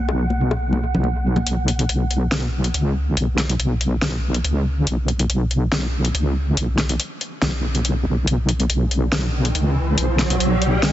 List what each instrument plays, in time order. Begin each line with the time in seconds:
Already playing: wobble bass B1, synth texture F#5
0.09 high bongo
0.30 high conga
0.51 high bongo
0.73 high conga
0.95 low conga
1.04 high conga
1.36 high bongo, high conga, low conga
1.46 wobble bass B1, closed hi-hat
1.68 closed hi-hat
1.79 closed hi-hat
1.89 wobble bass B1, closed hi-hat
2.11 closed hi-hat
2.32 snare, closed hi-hat
2.64 closed hi-hat
2.74 wobble bass C#2, closed hi-hat
3.17 wobble bass B1, closed hi-hat
3.38 snare, closed hi-hat
3.49 closed hi-hat
3.59 wobble bass B1, closed hi-hat
3.81 closed hi-hat
4.02 snare, closed hi-hat
4.34 closed hi-hat
4.44 wobble bass C#2, closed hi-hat
4.87 wobble bass B1, closed hi-hat
5.08 closed hi-hat
5.19 closed hi-hat
5.29 wobble bass B1, closed hi-hat
5.51 closed hi-hat
5.72 snare, closed hi-hat
6.05 closed hi-hat
6.14 wobble bass C#2, closed hi-hat
6.57 wobble bass B1, closed hi-hat
6.78 snare, closed hi-hat
6.89 closed hi-hat
7.00 closed hi-hat
7.21 closed hi-hat
7.42 wobble bass B1, snare, closed hi-hat
7.75 closed hi-hat
7.85 closed hi-hat
8.06 wobble bass B1
8.27 wobble bass B1, closed hi-hat, riser
8.49 closed hi-hat
8.60 closed hi-hat
8.70 wobble bass B1, closed hi-hat
8.91 closed hi-hat
9.12 snare, closed hi-hat
9.45 closed hi-hat
9.55 wobble bass C#2, closed hi-hat
9.98 wobble bass B1, closed hi-hat
10.19 snare, closed hi-hat
10.30 closed hi-hat
10.40 wobble bass B1, closed hi-hat
10.62 closed hi-hat
10.83 snare, closed hi-hat